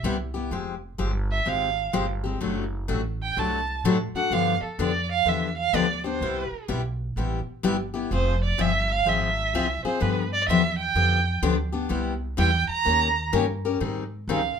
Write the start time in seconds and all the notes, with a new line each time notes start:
0.03 C2 C3 G3 B3 E4 G4
0.34 B3 E4 G4
0.51 F1 F3 G#3 C4 G4
0.98 G1 F3 G#3 C4 G4
1.32 E5
1.46 G#1 F3 G#3 C4 G4 F5
1.93 G1 F3 G#3 C4 G4
2.24 G#3 C4 G4
2.41 F#1 C3 F#3 A3 D4 F#4
2.88 A1 C3 F#3 A3 D4 F#4
3.23 G5
3.37 C2 C3 F#3 A3 D4 F#4 A5
3.84 A2 C3 F#3 A3 D4 F#4
4.14 A3 D4 F#4 F#5, muted upright bass stroke
4.30 G2 D3 F3 B3 D4 G4 F5
4.62 A4, muted upright bass stroke
4.79 F2 D3 F3 B3 D4 G4 D5
5.12 F5
5.25 E2 D3 F3 B3 D4 G4 E5
5.58 F5
5.73 D2 D3 F3 B3 D4 G4 D5
6.04 B3 D4 G4 C5
6.21 C2 C3 G3 B3 E4 G4
6.52 muted upright bass stroke
6.68 B1 C3 G3 B3 E4 G4
7.16 A1 C3 G3 B3 E4 G4
7.47 muted upright bass stroke
7.63 G1 C3 G3 B3 E4 G4
7.94 B3 E4 G4
8.11 F1 F3 C4 F4 G#4 C5
8.44 D5
8.58 G1 F3 C4 F4 G#4 E5
8.91 F5
9.06 G#1 F3 C4 F4 G#4 E5
9.54 C2 F3 C4 F4 G#4
9.84 C4 F4 G#4 C5, muted upright bass stroke
10.00 G2 D3 F3 B3 D4 G4 B4
10.32 D5
10.48 E2 D3 F3 B3 D4 G4 E5
10.79 G5
10.95 F2 D3 F3 B3 D4 G4
11.42 D2 D3 F3 B3 D4 G4
11.72 B3 D4 G4
11.89 C2 C3 G3 B3 E4 G4
12.37 E2 C3 G3 B3 E4 G4 G5
12.69 A#5, muted upright bass stroke
12.85 D#2 D#3 A#3 C#4 G4 A#4
13.33 G2 D#3 A#3 C#4 G4 A#4
13.65 C#4 G4 A#4
13.80 G#2 D#3 G3 C4 D#4 G#4
14.28 C#2 D#3 G3 C4 D#4 G#4 F5